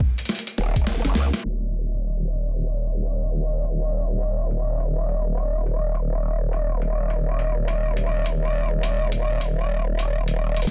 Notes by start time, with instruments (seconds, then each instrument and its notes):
0.00 kick
0.18 closed hi-hat
0.25 snare, closed hi-hat
0.29 closed hi-hat
0.35 closed hi-hat
0.39 closed hi-hat
0.47 closed hi-hat
0.58 wobble bass D#1, snare
0.76 kick, closed hi-hat
0.87 snare
1.05 wobble bass F#1, snare, closed hi-hat
1.15 wobble bass C#2, snare
1.33 snare, closed hi-hat
1.45 wobble bass D#1
1.91 closed hi-hat
2.20 closed hi-hat
2.49 closed hi-hat
2.78 closed hi-hat
3.07 closed hi-hat
3.36 closed hi-hat
3.65 closed hi-hat
4.22 closed hi-hat
4.51 closed hi-hat
4.80 closed hi-hat
5.09 closed hi-hat
5.37 closed hi-hat
5.66 closed hi-hat
5.95 closed hi-hat
6.53 closed hi-hat
6.82 closed hi-hat
7.10 closed hi-hat
7.39 closed hi-hat
7.68 closed hi-hat
7.97 closed hi-hat
8.26 closed hi-hat
8.83 closed hi-hat
9.12 closed hi-hat
9.41 closed hi-hat
9.99 closed hi-hat
10.28 closed hi-hat
10.56 closed hi-hat
10.62 closed hi-hat
10.67 wobble bass D#1, kick, snare, closed hi-hat